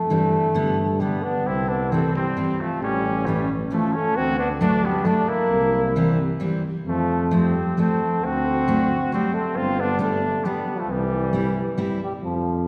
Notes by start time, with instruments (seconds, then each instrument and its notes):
Already playing: euphonium A3
0.08 tuba G2, steel-string acoustic guitar E3 G3 C4
0.54 tuba G2, steel-string acoustic guitar D3 G3 B3
1.00 steel-string acoustic guitar D3 G3 B3, euphonium G3, trumpet B3
1.22 euphonium B3, trumpet D4
1.45 tuba C2, euphonium C4, trumpet E4
1.68 euphonium B3, trumpet D4
1.91 steel-string acoustic guitar E3 G3 C4, euphonium A3, trumpet C4
2.15 euphonium G3, trumpet C4
2.36 steel-string acoustic guitar E3 G3 C4
2.60 euphonium F3, trumpet A3
2.81 tuba A1, euphonium G3, trumpet C#4
3.26 steel-string acoustic guitar E3 A3 C#4, euphonium E3, trumpet G3
3.71 steel-string acoustic guitar E3 A3 C#4, euphonium F3, trumpet A3
3.93 euphonium A3, trumpet C#4
4.16 tuba D2, euphonium C4, trumpet F#4
4.39 euphonium B3, trumpet D4
4.61 steel-string acoustic guitar F#3 A3 D4, euphonium A3, trumpet D4
4.84 euphonium G3, trumpet B3
5.04 steel-string acoustic guitar F#3 A3 D4, euphonium A3, trumpet D4
5.28 euphonium A#3, trumpet E4
5.50 tuba C2
5.96 steel-string acoustic guitar E3 G3 C4
6.40 steel-string acoustic guitar E3 G3 C4
6.85 tuba F2, euphonium F3, trumpet A3
7.31 steel-string acoustic guitar F3 A3 C4
7.35 euphonium G3, trumpet C4
7.77 steel-string acoustic guitar F3 A3 C4, euphonium A3, trumpet C4
8.22 tuba D2, euphonium C4, trumpet F#4
8.68 steel-string acoustic guitar F#3 A3 D4
9.12 steel-string acoustic guitar F#3 A3 D4, euphonium G3, trumpet C4
9.34 euphonium A3, trumpet C4
9.56 tuba G1, euphonium C4, trumpet F4
9.79 euphonium B3, trumpet D4
9.99 steel-string acoustic guitar G3 B3 D4, euphonium A3, trumpet D4
10.45 steel-string acoustic guitar G3 B3 D4, euphonium G3, trumpet B3
10.78 euphonium F3, trumpet A3
10.86 tuba C2, euphonium E3
10.91 trumpet G3
11.33 steel-string acoustic guitar G3 C4 E4
11.78 steel-string acoustic guitar G3 C4 E4
12.03 euphonium G3
12.23 tuba F2, euphonium F3